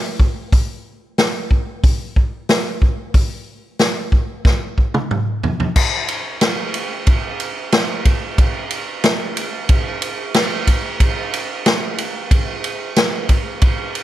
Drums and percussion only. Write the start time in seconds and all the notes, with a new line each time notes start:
0.20 kick
0.52 kick, open hi-hat
1.18 snare, open hi-hat
1.51 kick
1.84 kick, open hi-hat
2.16 kick
2.49 snare, open hi-hat
2.82 kick
3.14 kick, open hi-hat
3.79 snare, open hi-hat
4.12 kick
4.45 kick, snare
4.78 kick
4.94 mid tom
5.11 mid tom
5.43 floor tom
5.60 floor tom
5.76 kick, crash
6.08 ride
6.41 snare, ride
6.74 ride
7.07 kick, ride
7.40 ride
7.72 snare, ride
8.05 kick, ride
8.38 kick, ride
8.71 ride
9.04 snare, ride
9.37 ride
9.69 kick, ride
10.02 ride
10.34 snare, ride
10.67 kick, ride
11.00 kick, ride
11.34 ride
11.66 snare, ride
11.98 ride
12.31 kick, ride
12.64 ride
12.96 snare, ride
13.29 kick, ride
13.62 kick, ride
13.95 ride